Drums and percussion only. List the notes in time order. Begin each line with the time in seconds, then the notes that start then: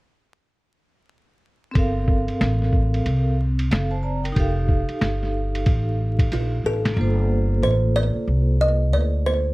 1.75 kick, ride
2.08 kick
2.28 ride
2.41 snare, hi-hat pedal, ride
2.62 snare
2.73 kick
2.94 ride
3.06 ride
3.59 ride
3.71 snare, hi-hat pedal, ride
4.25 ride
4.36 kick, ride
4.69 kick
4.89 ride
5.01 snare, hi-hat pedal, ride
5.23 snare
5.55 ride
5.66 kick, ride
6.19 kick, ride
6.32 hi-hat pedal, ride
6.85 snare, ride